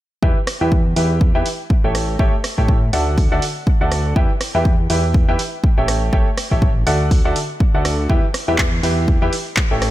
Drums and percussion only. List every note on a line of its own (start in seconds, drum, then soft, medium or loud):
0.23 kick loud
0.47 cross-stick medium
0.47 open hi-hat loud
0.72 kick loud
0.96 open hi-hat loud
1.21 kick loud
1.46 open hi-hat loud
1.70 kick loud
1.95 cross-stick medium
1.95 open hi-hat loud
2.19 kick loud
2.44 cross-stick medium
2.44 open hi-hat loud
2.58 kick medium
2.68 kick loud
2.93 open hi-hat loud
3.18 kick loud
3.18 open hi-hat medium
3.42 open hi-hat loud
3.67 kick loud
3.92 cross-stick medium
3.92 open hi-hat loud
4.16 kick loud
4.41 cross-stick medium
4.41 open hi-hat loud
4.65 kick loud
4.90 open hi-hat loud
5.14 kick loud
5.39 open hi-hat loud
5.64 kick loud
5.88 cross-stick medium
5.88 open hi-hat loud
6.13 kick loud
6.38 cross-stick medium
6.38 open hi-hat loud
6.51 kick medium
6.62 kick loud
6.87 open hi-hat loud
7.11 kick loud
7.11 open hi-hat medium
7.36 open hi-hat loud
7.60 kick loud
7.85 cross-stick medium
7.85 open hi-hat loud
8.10 kick loud
8.34 cross-stick medium
8.34 open hi-hat loud
8.58 kick loud
8.58 clap loud
8.83 open hi-hat loud
9.08 kick loud
9.33 open hi-hat loud
9.57 kick loud
9.57 clap loud
9.82 cross-stick medium
9.82 open hi-hat loud